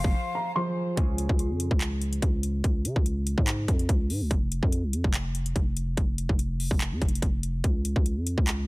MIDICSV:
0, 0, Header, 1, 7, 480
1, 0, Start_track
1, 0, Tempo, 416667
1, 1123, Time_signature, 4, 2, 24, 8
1, 9988, End_track
2, 0, Start_track
2, 0, Title_t, "Felt piano"
2, 0, Program_c, 0, 0
2, 0, Note_on_c, 0, 84, 80
2, 373, Note_off_c, 0, 84, 0
2, 403, Note_on_c, 0, 82, 78
2, 615, Note_off_c, 0, 82, 0
2, 641, Note_on_c, 0, 84, 95
2, 853, Note_off_c, 0, 84, 0
2, 9988, End_track
3, 0, Start_track
3, 0, Title_t, "Flute"
3, 0, Program_c, 1, 73
3, 0, Note_on_c, 1, 77, 93
3, 597, Note_off_c, 1, 77, 0
3, 9988, End_track
4, 0, Start_track
4, 0, Title_t, "String section"
4, 0, Program_c, 2, 48
4, 0, Note_on_c, 2, 53, 83
4, 0, Note_on_c, 2, 65, 76
4, 0, Note_on_c, 2, 68, 77
4, 0, Note_on_c, 2, 72, 92
4, 1077, Note_off_c, 2, 68, 0
4, 1084, Note_off_c, 2, 53, 0
4, 1084, Note_off_c, 2, 72, 0
4, 1085, Note_off_c, 2, 65, 0
4, 9988, End_track
5, 0, Start_track
5, 0, Title_t, "Harp"
5, 0, Program_c, 3, 46
5, 0, Note_on_c, 3, 53, 71
5, 0, Note_on_c, 3, 65, 62
5, 0, Note_on_c, 3, 68, 65
5, 0, Note_on_c, 3, 72, 71
5, 594, Note_off_c, 3, 65, 0
5, 599, Note_off_c, 3, 68, 0
5, 605, Note_off_c, 3, 72, 0
5, 621, Note_off_c, 3, 53, 0
5, 635, Note_on_c, 3, 53, 56
5, 641, Note_on_c, 3, 65, 47
5, 647, Note_on_c, 3, 68, 50
5, 653, Note_on_c, 3, 72, 56
5, 1103, Note_on_c, 3, 49, 66
5, 1113, Note_off_c, 3, 65, 0
5, 1115, Note_on_c, 3, 61, 58
5, 1125, Note_off_c, 3, 68, 0
5, 1127, Note_on_c, 3, 65, 64
5, 1128, Note_off_c, 3, 72, 0
5, 1139, Note_on_c, 3, 68, 76
5, 1180, Note_off_c, 3, 53, 0
5, 3758, Note_off_c, 3, 68, 0
5, 4033, Note_off_c, 3, 65, 0
5, 4453, Note_off_c, 3, 61, 0
5, 5020, Note_off_c, 3, 49, 0
5, 9988, End_track
6, 0, Start_track
6, 0, Title_t, "808-style bass"
6, 0, Program_c, 4, 38
6, 50, Note_on_c, 4, 29, 105
6, 163, Note_off_c, 4, 29, 0
6, 1123, Note_on_c, 4, 37, 107
6, 1475, Note_off_c, 4, 37, 0
6, 1490, Note_on_c, 4, 37, 106
6, 1730, Note_on_c, 4, 41, 96
6, 1747, Note_off_c, 4, 37, 0
6, 1958, Note_off_c, 4, 41, 0
6, 1970, Note_on_c, 4, 37, 100
6, 2539, Note_off_c, 4, 37, 0
6, 2561, Note_on_c, 4, 37, 104
6, 3023, Note_off_c, 4, 37, 0
6, 3042, Note_on_c, 4, 37, 106
6, 3282, Note_on_c, 4, 49, 98
6, 3300, Note_off_c, 4, 37, 0
6, 3403, Note_off_c, 4, 49, 0
6, 3410, Note_on_c, 4, 37, 104
6, 3871, Note_off_c, 4, 37, 0
6, 3890, Note_on_c, 4, 44, 98
6, 4229, Note_off_c, 4, 44, 0
6, 4242, Note_on_c, 4, 41, 107
6, 4473, Note_off_c, 4, 41, 0
6, 4482, Note_on_c, 4, 37, 106
6, 4723, Note_on_c, 4, 44, 99
6, 4740, Note_off_c, 4, 37, 0
6, 4850, Note_on_c, 4, 37, 99
6, 4867, Note_off_c, 4, 44, 0
6, 4957, Note_off_c, 4, 37, 0
6, 4962, Note_on_c, 4, 29, 109
6, 5315, Note_off_c, 4, 29, 0
6, 5330, Note_on_c, 4, 41, 108
6, 5570, Note_on_c, 4, 36, 94
6, 5587, Note_off_c, 4, 41, 0
6, 5682, Note_on_c, 4, 41, 99
6, 5699, Note_off_c, 4, 36, 0
6, 5803, Note_off_c, 4, 41, 0
6, 5809, Note_on_c, 4, 29, 99
6, 6379, Note_off_c, 4, 29, 0
6, 6401, Note_on_c, 4, 29, 105
6, 6863, Note_off_c, 4, 29, 0
6, 6882, Note_on_c, 4, 29, 107
6, 7235, Note_off_c, 4, 29, 0
6, 7249, Note_on_c, 4, 29, 104
6, 7710, Note_off_c, 4, 29, 0
6, 7729, Note_on_c, 4, 29, 103
6, 7969, Note_on_c, 4, 41, 100
6, 7987, Note_off_c, 4, 29, 0
6, 8077, Note_off_c, 4, 41, 0
6, 8082, Note_on_c, 4, 29, 107
6, 8313, Note_off_c, 4, 29, 0
6, 8321, Note_on_c, 4, 29, 105
6, 8783, Note_off_c, 4, 29, 0
6, 8802, Note_on_c, 4, 37, 109
6, 9155, Note_off_c, 4, 37, 0
6, 9169, Note_on_c, 4, 37, 104
6, 9409, Note_on_c, 4, 41, 93
6, 9426, Note_off_c, 4, 37, 0
6, 9637, Note_off_c, 4, 41, 0
6, 9650, Note_on_c, 4, 37, 101
6, 9988, Note_off_c, 4, 37, 0
6, 9988, End_track
7, 0, Start_track
7, 0, Title_t, "Drums"
7, 50, Note_on_c, 9, 36, 101
7, 165, Note_off_c, 9, 36, 0
7, 1122, Note_on_c, 9, 42, 72
7, 1123, Note_on_c, 9, 36, 115
7, 1237, Note_off_c, 9, 42, 0
7, 1238, Note_off_c, 9, 36, 0
7, 1363, Note_on_c, 9, 42, 83
7, 1478, Note_off_c, 9, 42, 0
7, 1490, Note_on_c, 9, 36, 92
7, 1603, Note_on_c, 9, 42, 77
7, 1605, Note_off_c, 9, 36, 0
7, 1718, Note_off_c, 9, 42, 0
7, 1842, Note_on_c, 9, 42, 81
7, 1957, Note_off_c, 9, 42, 0
7, 1970, Note_on_c, 9, 36, 97
7, 2082, Note_on_c, 9, 39, 116
7, 2082, Note_on_c, 9, 42, 89
7, 2085, Note_off_c, 9, 36, 0
7, 2197, Note_off_c, 9, 39, 0
7, 2197, Note_off_c, 9, 42, 0
7, 2322, Note_on_c, 9, 42, 58
7, 2437, Note_off_c, 9, 42, 0
7, 2449, Note_on_c, 9, 42, 59
7, 2562, Note_off_c, 9, 42, 0
7, 2562, Note_on_c, 9, 36, 96
7, 2562, Note_on_c, 9, 42, 80
7, 2677, Note_off_c, 9, 36, 0
7, 2677, Note_off_c, 9, 42, 0
7, 2803, Note_on_c, 9, 42, 78
7, 2918, Note_off_c, 9, 42, 0
7, 3042, Note_on_c, 9, 36, 118
7, 3043, Note_on_c, 9, 42, 73
7, 3158, Note_off_c, 9, 36, 0
7, 3158, Note_off_c, 9, 42, 0
7, 3283, Note_on_c, 9, 42, 85
7, 3398, Note_off_c, 9, 42, 0
7, 3410, Note_on_c, 9, 36, 89
7, 3523, Note_on_c, 9, 42, 73
7, 3525, Note_off_c, 9, 36, 0
7, 3639, Note_off_c, 9, 42, 0
7, 3763, Note_on_c, 9, 42, 80
7, 3879, Note_off_c, 9, 42, 0
7, 3890, Note_on_c, 9, 36, 97
7, 4002, Note_on_c, 9, 39, 122
7, 4003, Note_on_c, 9, 42, 89
7, 4005, Note_off_c, 9, 36, 0
7, 4117, Note_off_c, 9, 39, 0
7, 4118, Note_off_c, 9, 42, 0
7, 4243, Note_on_c, 9, 36, 95
7, 4243, Note_on_c, 9, 42, 56
7, 4358, Note_off_c, 9, 36, 0
7, 4358, Note_off_c, 9, 42, 0
7, 4370, Note_on_c, 9, 42, 57
7, 4482, Note_off_c, 9, 42, 0
7, 4482, Note_on_c, 9, 36, 99
7, 4482, Note_on_c, 9, 42, 81
7, 4597, Note_off_c, 9, 36, 0
7, 4598, Note_off_c, 9, 42, 0
7, 4723, Note_on_c, 9, 46, 60
7, 4839, Note_off_c, 9, 46, 0
7, 4962, Note_on_c, 9, 36, 119
7, 4963, Note_on_c, 9, 42, 72
7, 5077, Note_off_c, 9, 36, 0
7, 5078, Note_off_c, 9, 42, 0
7, 5203, Note_on_c, 9, 42, 82
7, 5319, Note_off_c, 9, 42, 0
7, 5330, Note_on_c, 9, 36, 89
7, 5443, Note_on_c, 9, 42, 75
7, 5445, Note_off_c, 9, 36, 0
7, 5558, Note_off_c, 9, 42, 0
7, 5682, Note_on_c, 9, 42, 80
7, 5797, Note_off_c, 9, 42, 0
7, 5809, Note_on_c, 9, 36, 96
7, 5921, Note_on_c, 9, 39, 120
7, 5921, Note_on_c, 9, 42, 87
7, 5925, Note_off_c, 9, 36, 0
7, 6036, Note_off_c, 9, 39, 0
7, 6036, Note_off_c, 9, 42, 0
7, 6161, Note_on_c, 9, 42, 59
7, 6276, Note_off_c, 9, 42, 0
7, 6289, Note_on_c, 9, 42, 58
7, 6401, Note_on_c, 9, 36, 101
7, 6402, Note_off_c, 9, 42, 0
7, 6402, Note_on_c, 9, 42, 78
7, 6516, Note_off_c, 9, 36, 0
7, 6517, Note_off_c, 9, 42, 0
7, 6642, Note_on_c, 9, 42, 74
7, 6758, Note_off_c, 9, 42, 0
7, 6882, Note_on_c, 9, 36, 122
7, 6882, Note_on_c, 9, 42, 72
7, 6997, Note_off_c, 9, 36, 0
7, 6997, Note_off_c, 9, 42, 0
7, 7122, Note_on_c, 9, 42, 84
7, 7237, Note_off_c, 9, 42, 0
7, 7249, Note_on_c, 9, 36, 92
7, 7362, Note_on_c, 9, 42, 73
7, 7365, Note_off_c, 9, 36, 0
7, 7477, Note_off_c, 9, 42, 0
7, 7602, Note_on_c, 9, 46, 57
7, 7718, Note_off_c, 9, 46, 0
7, 7729, Note_on_c, 9, 36, 95
7, 7842, Note_on_c, 9, 39, 120
7, 7842, Note_on_c, 9, 42, 89
7, 7845, Note_off_c, 9, 36, 0
7, 7957, Note_off_c, 9, 39, 0
7, 7957, Note_off_c, 9, 42, 0
7, 8082, Note_on_c, 9, 36, 97
7, 8082, Note_on_c, 9, 42, 42
7, 8162, Note_off_c, 9, 42, 0
7, 8162, Note_on_c, 9, 42, 58
7, 8198, Note_off_c, 9, 36, 0
7, 8242, Note_off_c, 9, 42, 0
7, 8242, Note_on_c, 9, 42, 71
7, 8321, Note_on_c, 9, 36, 102
7, 8322, Note_off_c, 9, 42, 0
7, 8322, Note_on_c, 9, 42, 79
7, 8436, Note_off_c, 9, 36, 0
7, 8438, Note_off_c, 9, 42, 0
7, 8563, Note_on_c, 9, 42, 75
7, 8678, Note_off_c, 9, 42, 0
7, 8802, Note_on_c, 9, 36, 116
7, 8802, Note_on_c, 9, 42, 73
7, 8917, Note_off_c, 9, 36, 0
7, 8918, Note_off_c, 9, 42, 0
7, 9043, Note_on_c, 9, 42, 86
7, 9158, Note_off_c, 9, 42, 0
7, 9170, Note_on_c, 9, 36, 90
7, 9282, Note_on_c, 9, 42, 74
7, 9285, Note_off_c, 9, 36, 0
7, 9398, Note_off_c, 9, 42, 0
7, 9522, Note_on_c, 9, 42, 81
7, 9638, Note_off_c, 9, 42, 0
7, 9650, Note_on_c, 9, 36, 101
7, 9762, Note_on_c, 9, 39, 122
7, 9762, Note_on_c, 9, 42, 90
7, 9765, Note_off_c, 9, 36, 0
7, 9877, Note_off_c, 9, 39, 0
7, 9877, Note_off_c, 9, 42, 0
7, 9988, End_track
0, 0, End_of_file